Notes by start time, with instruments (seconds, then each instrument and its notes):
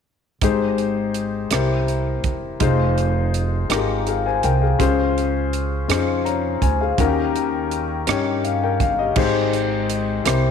0.41 upright bass G#1, grand piano G#2 D#4 G4 G#4 C5, kick, closed hi-hat
0.78 closed hi-hat
1.14 closed hi-hat
1.51 upright bass C2, grand piano C3 E4 G4 A#4 C5, cross-stick, closed hi-hat
1.88 closed hi-hat
2.24 upright bass E1, kick, closed hi-hat
2.60 upright bass F1, grand piano D#4 F4 G#4 C5, kick, closed hi-hat
2.98 closed hi-hat
3.34 closed hi-hat
3.69 upright bass G#1, grand piano D#4 F4 G4 A#4, cross-stick, closed hi-hat
3.76 grand piano G#4
4.07 grand piano G#4 F5, closed hi-hat
4.26 grand piano C5 G#5
4.43 upright bass C2, grand piano A#4 G5, closed hi-hat
4.62 grand piano G#4 F5
4.79 upright bass C#2, grand piano C#3 C#4 F4 G#4 C5, kick, closed hi-hat
5.18 closed hi-hat
5.53 closed hi-hat
5.88 upright bass F2, grand piano C#4 D#4 G#4 C5, cross-stick, closed hi-hat
5.95 grand piano F4
6.25 grand piano C#5 A#5, closed hi-hat
6.62 upright bass D2, grand piano C5 G#5, kick, closed hi-hat
6.81 grand piano G#4 F5
6.98 upright bass D#2, grand piano D#3 C#4 D#4 F#4 A#4, kick, closed hi-hat
7.06 grand piano G4
7.36 closed hi-hat
7.71 closed hi-hat
8.07 upright bass G2, grand piano C#4 D#4 G4 C#5, cross-stick, closed hi-hat
8.45 grand piano F5, closed hi-hat
8.64 grand piano A#4 G5
8.80 upright bass G1, grand piano F5, kick, closed hi-hat
8.99 grand piano G4 D#5
9.16 upright bass G#1, grand piano G#2 D#4 G4 G#4 C5, kick, crash
9.53 closed hi-hat
9.90 closed hi-hat
10.25 upright bass C2, grand piano C3 E4 G4 A#4 C5, cross-stick, closed hi-hat